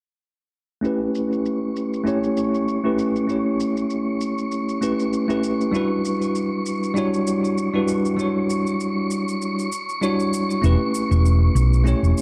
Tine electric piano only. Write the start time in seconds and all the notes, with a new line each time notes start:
0.81 A3 C#4 E4 G4
0.86 B4
2.04 A3 C#4 E4 G4
2.08 C#5
2.84 A3 C#4 E4 G4 B4
3.27 A3 C#4 E4 G4
3.31 C#5
4.81 A3 C#4 E4 G4 B4
5.28 A3 C#4 E4 G4 B4
5.72 G3 D4 E4 F#4
5.76 B4
6.94 G3 D4 E4 F#4
6.98 C#5
7.74 G3 D4 E4 F#4 B4
8.16 G3 D4 E4 F#4
8.21 C#5
10.01 G3 D4 E4 F#4 C#5
10.62 A3 C#4 E4 G4
10.66 B4
11.84 A3 C#4 E4 G4
11.88 C#5